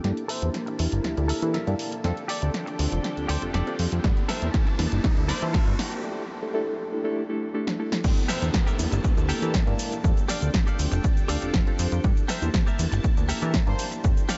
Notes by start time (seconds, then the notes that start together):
0.04 G2 A#3 D4 E4 G4 A4 A5, snare, closed hi-hat, riser
0.17 closed hi-hat
0.28 A4 A#4 C5 E5, open hi-hat
0.42 E2 A#3 D4 E4 G4 A5, closed hi-hat
0.54 snare, closed hi-hat
0.66 muted clean electric guitar stroke, closed hi-hat
0.78 E2 A#3 D4 E4 G4, muted clean electric guitar stroke, open hi-hat
0.92 G1, closed hi-hat
1.03 muted clean electric guitar stroke, snare, closed hi-hat
1.17 D2 A#3 D4 E4 G4 A4, closed hi-hat
1.28 A4 A#4 E5, open hi-hat
1.42 E3 A#3 D4 E4 G4 A4, closed hi-hat
1.54 A4 A#4 E5, snare, closed hi-hat
1.67 G2 A#3 D4 E4 G4 A5, closed hi-hat
1.79 open hi-hat
1.92 muted clean electric guitar stroke, closed hi-hat
2.04 F2 C4 D4 F4 G4 A4 G5, snare, closed hi-hat
2.17 closed hi-hat
2.28 G4 A4 D5, open hi-hat
2.42 D2 C4 D4 F4 G4 A4 D5, closed hi-hat
2.54 snare, closed hi-hat
2.66 muted clean electric guitar stroke, closed hi-hat
2.78 D2 C4 D4 F4 G4 C5, muted clean electric guitar stroke, open hi-hat
2.92 F1, closed hi-hat
3.03 muted clean electric guitar stroke, snare, closed hi-hat
3.17 D2 C4 D4 F4 G4 A4, closed hi-hat
3.28 D2 G4 A4 C5, open hi-hat
3.42 F1 C4 D4 F4 G4 A4, closed hi-hat
3.53 F1 G4 A4 D5, snare, closed hi-hat
3.67 C4 D4 F4 G4 A4, closed hi-hat
3.79 F2, open hi-hat
3.91 F2, muted clean electric guitar stroke, closed hi-hat
4.04 G2 A#3 D4 E4 G4 A4 A5, kick, snare, closed hi-hat
4.17 closed hi-hat
4.28 A4 A#4 C5 E5, snare, open hi-hat
4.42 E2 A#3 D4 E4 G4 A5, closed hi-hat
4.54 kick, snare, closed hi-hat
4.67 muted clean electric guitar stroke, closed hi-hat
4.78 E2 A#3 D4 E4 G4 A#4, muted clean electric guitar stroke, snare, open hi-hat
4.92 G1, closed hi-hat
5.03 D2 A#3 D4 E4 G4 A4, muted clean electric guitar stroke, kick, snare, closed hi-hat
5.17 D2, closed hi-hat
5.28 A4 A#4 C5 D5, snare, open hi-hat
5.42 E3 A#3 D4 E4 G4 A5, closed hi-hat
5.53 A4 A#4 E5, kick, snare, closed hi-hat
5.67 G2, closed hi-hat
5.79 A#3 D4 E4 G4 A#4, snare, open hi-hat
5.91 muted clean electric guitar stroke, closed hi-hat
6.04 A3 D4 E4 G4 A4
6.42 A3 D4 E4 G4 A4
6.54 A3 D4 E4 G4 A4
6.92 A3 D4 E4 G4 A4
7.04 A3 D4 E4 G4 A4
7.29 A3 D4 E4 G4 A4
7.54 A3 D4 E4 G4 A4
7.67 snare
7.79 A3 D4 E4 G4 A4
7.92 snare
8.04 G2 A#3 D4 E4 G4 A4 A5, kick, closed hi-hat, crash, downlifter, shaker
8.17 closed hi-hat, shaker
8.28 G4 A4 A#4 C5 E5, snare, open hi-hat, shaker
8.42 E2 A#3 D4 E4 G4 A5, closed hi-hat, shaker
8.54 kick, snare, closed hi-hat, shaker
8.67 G4 A4 A#4 E5, closed hi-hat, shaker
8.79 E2 A#3 D4 E4 G4, open hi-hat, shaker
8.92 G1, muted clean electric guitar stroke, closed hi-hat, shaker
9.04 muted clean electric guitar stroke, kick, closed hi-hat, shaker
9.17 D2 A#3 D4 E4 G4 A4, closed hi-hat, shaker
9.29 G4 A4 A#4 G5, open hi-hat, shaker
9.42 E3 A#3 D4 E4 G4 A4, closed hi-hat, shaker
9.54 kick, snare, closed hi-hat, shaker
9.67 G2 A#3 D4 E4 G4 A5, closed hi-hat
9.79 open hi-hat, shaker
9.92 muted clean electric guitar stroke, closed hi-hat, shaker
10.04 F2 C4 D4 F4 G4 A4 G5, kick, closed hi-hat, shaker
10.17 closed hi-hat, shaker
10.28 G4 A4 D5 F5, snare, open hi-hat, shaker
10.42 D2 C4 D4 F4 G4 A4 D5, closed hi-hat, shaker
10.54 kick, snare, closed hi-hat, shaker
10.67 G4 A4 D5 F5, closed hi-hat, shaker
10.79 D2 C4 D4 F4 G4 C5, open hi-hat, shaker
10.92 F1, muted clean electric guitar stroke, closed hi-hat, shaker
11.04 muted clean electric guitar stroke, kick, closed hi-hat, shaker
11.17 D2 C4 D4 F4 G4 A4, closed hi-hat, shaker
11.28 D2 G4 A4 D5 F5 A5, open hi-hat, shaker
11.42 F1 C4 D4 F4 G4 A4, closed hi-hat, shaker
11.54 F1, kick, snare, closed hi-hat, shaker
11.67 C4 D4 F4 G4 A4, closed hi-hat
11.79 F2 C5, open hi-hat, shaker
11.91 F2, muted clean electric guitar stroke, closed hi-hat, shaker
12.04 G2 A#3 D4 E4 G4 A4 A5, kick, closed hi-hat, shaker
12.17 closed hi-hat, shaker
12.28 G4 A4 A#4 C5 E5, snare, open hi-hat, shaker
12.42 E2 A#3 D4 E4 G4 A5, closed hi-hat, shaker
12.54 kick, snare, closed hi-hat, shaker
12.66 G4 A4 A#4 E5, closed hi-hat, shaker
12.79 E2 A#3 D4 E4 G4, open hi-hat, shaker
12.92 G1, muted clean electric guitar stroke, closed hi-hat, shaker
13.04 muted clean electric guitar stroke, kick, closed hi-hat, shaker
13.17 D2 A#3 D4 E4 G4 A4, closed hi-hat, shaker
13.29 G4 A4 A#4 E5, open hi-hat, shaker
13.42 E3 A#3 D4 E4 G4 A4, closed hi-hat, shaker
13.54 kick, snare, closed hi-hat, shaker
13.67 G2 A#3 D4 E4 G4 C5 A5, closed hi-hat
13.79 open hi-hat, shaker
13.92 muted clean electric guitar stroke, closed hi-hat, shaker
14.04 F2 C4 D4 F4 G4 A4 G5, kick, closed hi-hat, shaker
14.17 closed hi-hat, shaker
14.29 G4 A4 D5 F5, snare, open hi-hat, shaker